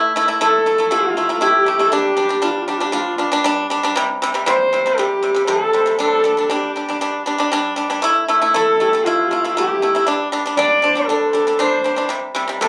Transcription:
Already playing: A3 E4
0.16 A3 E4
0.28 A3 E4
0.41 A3 E4 A4
0.66 A3 E4
0.78 A3 E4
0.91 A3 E4 F4
1.11 G4
1.15 A3 E4 F4
1.29 A3 E4
1.35 A4
1.41 A3 E4 G4
1.66 A3 E4
1.79 A3 E4
1.85 A4
1.92 G3 D4 G4
1.96 G4
2.17 G3 D4 G4
2.29 G3 D4
2.42 G3 D4 F4
2.52 G4
2.62 F4
2.68 G3 D4 G4
2.78 G3 D4 F4
2.86 G4
2.92 G3 D4 F4
3.18 G3 D4
3.32 G3 D4
3.44 G3 D4
3.70 G3 D4
3.83 G3 D4
3.96 C3 G3
4.22 C3 G3
4.34 C3 G3
4.46 C3 G3 C5
4.73 C3 G3
4.86 C3 G3
4.98 C3 G3 G4
5.23 C3 G3
5.35 C3 G3
5.45 C3 G3 A4 C5
5.50 A4
5.73 C3 G3 C5
5.86 C3 G3
5.99 G3 D4 A4
6.06 C5
6.14 A4
6.24 G3 D4
6.37 G3 D4
6.42 A4
6.49 G3 D4 G4
6.76 G3 D4
6.89 G3 D4
7.01 G3 D4
7.26 G3 D4
7.38 G3 D4
7.52 G3 D4
7.76 G3 D4
7.90 G3 D4
8.02 A3 E4
8.28 A3 E4
8.42 A3 E4
8.54 A3 E4 A4
8.77 A3 A4
8.81 E4 G4
8.93 A3 E4
9.05 A3 E4 F4
9.27 G4
9.31 A3 E4 F4
9.44 A3 E4
9.55 A3 E4 G4
9.59 G4
9.82 A3 E4
9.95 A3 E4
10.07 G3 D4
10.32 G3 D4
10.46 G3 D4
10.57 G3 D4 D5
10.82 G3 D4 C5
10.95 G3 D4
11.07 G3 D4 A4
11.27 C5
11.33 G3 D4 A4
11.47 G3 D4
11.58 G3 D4 C5
11.84 G3 D4 C5
11.96 G3 D4
12.09 C3 G3
12.35 C3 G3
12.48 C3 G3
12.61 C3 G3 A4

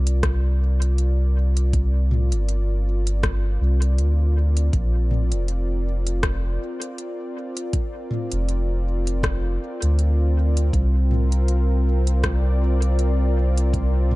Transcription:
Already playing: C2 C4 F4 A#4 D5
0.07 closed hi-hat
0.23 kick, cross-stick, closed hi-hat
0.82 closed hi-hat
0.98 closed hi-hat
1.57 closed hi-hat
1.73 kick, closed hi-hat
2.11 mid tom
2.31 G1, closed hi-hat
2.49 closed hi-hat
3.07 closed hi-hat
3.23 kick, cross-stick, closed hi-hat
3.61 C2
3.82 closed hi-hat
3.98 D2, closed hi-hat
4.57 closed hi-hat
4.73 A#1 C4, kick, closed hi-hat
5.11 mid tom
5.32 F1, closed hi-hat
5.48 closed hi-hat
6.07 closed hi-hat
6.23 kick, cross-stick, closed hi-hat
6.82 closed hi-hat
6.98 closed hi-hat
7.57 closed hi-hat
7.73 kick, closed hi-hat
8.11 mid tom
8.31 F1, closed hi-hat
8.49 closed hi-hat
9.07 closed hi-hat
9.23 kick, cross-stick, closed hi-hat
9.82 D2, closed hi-hat
9.99 closed hi-hat
10.57 closed hi-hat
10.73 C2, kick, closed hi-hat
10.86 F4
10.98 A#4
11.11 mid tom
11.32 closed hi-hat
11.48 closed hi-hat
12.07 D5, closed hi-hat
12.23 kick, cross-stick, closed hi-hat
12.82 closed hi-hat
12.99 closed hi-hat
13.58 closed hi-hat
13.74 kick, closed hi-hat
14.11 mid tom

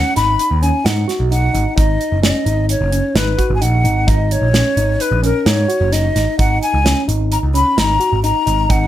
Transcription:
Already playing: C#4 F#5
0.16 G#1 D#4 B5, snare, closed hi-hat
0.39 closed hi-hat
0.51 D#2
0.62 C#4 G#5, closed hi-hat
0.84 G#2 D#4 F#5, snare, closed hi-hat
1.08 F#4, snare, closed hi-hat
1.20 B1
1.31 D#4 F#5, closed hi-hat
1.54 G#1 D#4, closed hi-hat
1.76 G#1 D#4 D#5, kick, closed hi-hat
2.01 closed hi-hat
2.12 F#1
2.22 C#4 D#5, snare, closed hi-hat
2.46 G#1 D#4, closed hi-hat
2.69 C#5, closed hi-hat
2.81 F#1
2.92 C#4, closed hi-hat
3.15 G#1 D#4 B4, snare, closed hi-hat
3.38 F#4, kick, closed hi-hat
3.50 G#1
3.55 G#5
3.61 A#1 D#4 F#5, closed hi-hat
3.84 G#1 D#4, closed hi-hat
4.07 G#1 D#4 D#5, kick, closed hi-hat
4.31 C#5, closed hi-hat
4.42 A#1
4.53 C#4, snare, closed hi-hat
4.77 G#1 D#4, closed hi-hat
5.00 B4, closed hi-hat
5.12 A#1
5.23 C#4 A#4, closed hi-hat
5.46 G#2 D#4 C#5, snare, closed hi-hat
5.68 F#4, closed hi-hat
5.81 F#1
5.92 D#4 D#5, snare, closed hi-hat
6.16 G#1 D#4, snare, closed hi-hat
6.39 G#1 D#4 F#5, kick, closed hi-hat
6.62 G#5, closed hi-hat
6.74 C#2
6.85 C#4, snare, closed hi-hat
7.08 G#1 D#4, closed hi-hat
7.32 A#5, closed hi-hat
7.43 C#2
7.54 C#4 B5, closed hi-hat
7.77 G#1 D#4 A#5, snare, closed hi-hat
8.00 F#4, closed hi-hat
8.13 G#1
8.23 D#4 A#5, closed hi-hat
8.46 G#1 D#4, closed hi-hat
8.69 G#1 D#4 F#5, kick, closed hi-hat

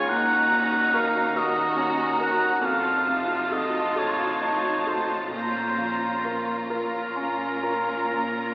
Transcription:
Already playing: C#2 C#3 G#3 F4 G#4 C#5 C#6
0.09 D#2 C#4 D#4 F#4 F#5 A#5
0.51 A#2
0.93 F#4 A#4 F5
1.36 C#4 F#4 A#4 D#5 A#5
1.77 C#4
2.19 F#4 A#4
2.23 F#5
2.61 F1 F2 F4 F#4 A5
2.65 D#4 F5
3.07 C3
3.51 F#4 A4 D#5
3.95 A1 A2 F#4 A4 C#5
4.41 D#4
4.85 F#4 A4 C5
5.31 A#1 A#2 C#4 F4 C5 A#5
5.78 F3
6.25 F4 A#4
6.70 C#4 F4 A#4 A#5
7.16 C#4
7.63 F4 A#4
8.12 A#2

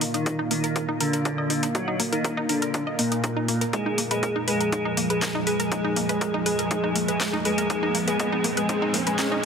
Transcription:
Already playing: A#2 A#3 F5
0.01 D#4, open hi-hat
0.14 D#3 D#4, closed hi-hat
0.26 D#4, kick, closed hi-hat
0.39 D#4
0.51 D#3 A#3 D#4, open hi-hat
0.64 A#4, closed hi-hat
0.76 A#4, kick, closed hi-hat
0.89 D#4
1.00 D3 D4 A#4, open hi-hat
1.13 A#4, closed hi-hat
1.25 D4, kick, closed hi-hat
1.38 D#5
1.50 D#4, open hi-hat
1.63 D#4, closed hi-hat
1.75 F#3 D#4 F#4, kick, closed hi-hat
1.88 D#4
2.00 A#3, open hi-hat
2.13 D#3 D#4 A#4, closed hi-hat
2.24 A#4, kick, closed hi-hat
2.37 D#4
2.49 D3 D4 A#4, open hi-hat
2.62 A#4, closed hi-hat
2.74 D4, kick, closed hi-hat
2.87 D#5
2.99 A#2 A#3 D#4, open hi-hat
3.12 D#4, closed hi-hat
3.24 D#4, kick, closed hi-hat
3.37 D#4
3.48 A#3, open hi-hat
3.61 A#4, closed hi-hat
3.73 F3 G#3 D#4 G#4, kick, closed hi-hat, riser
3.86 D#4
3.98 A#3, open hi-hat
4.11 G#3 G#4 B4, closed hi-hat, mid tom
4.23 A#4, kick, closed hi-hat
4.36 D#4
4.48 G#3 G#4 B4, open hi-hat
4.60 A#4, closed hi-hat
4.72 G#3 D#4 G#4, kick, closed hi-hat
4.85 D#4
4.97 A#3, open hi-hat
5.10 G#3 G#4 B4, closed hi-hat
5.22 A#4, kick, snare, closed hi-hat
5.35 D#4, mid tom
5.47 G#3 G#4 B4, open hi-hat
5.60 A#4, closed hi-hat
5.72 G#3 D#4 G#4, kick, closed hi-hat
5.84 D#4
5.96 A#3, open hi-hat
6.09 G#3 G#4 B4, closed hi-hat, mid tom
6.21 A#4, kick, closed hi-hat
6.34 D#4
6.46 G#3 G#4 B4, open hi-hat
6.59 A#4, closed hi-hat
6.71 G#3 D#4 G#4, kick, closed hi-hat
6.84 D#4
6.96 A#3, open hi-hat
7.08 G#3 G#4 B4, closed hi-hat
7.20 A#4, kick, snare, closed hi-hat
7.33 D#4
7.45 G#3 G#4 B4, open hi-hat
7.58 A#4, closed hi-hat, mid tom
7.70 G#3 D#4 G#4, kick, closed hi-hat
7.83 D#4
7.95 A#3, open hi-hat
8.08 G#3 G#4 B4, closed hi-hat, mid tom
8.19 G#3 D#4 G#4, kick, closed hi-hat
8.32 D#4
8.44 A#3, open hi-hat
8.57 G#3 G#4 B4, closed hi-hat
8.69 G#3 D#4 G#4, kick, closed hi-hat
8.82 D#4
8.94 A#3, open hi-hat
9.07 G#3 G#4 B4, closed hi-hat
9.19 G#3 D#4 G#4, kick, snare, closed hi-hat
9.31 D#4, mid tom

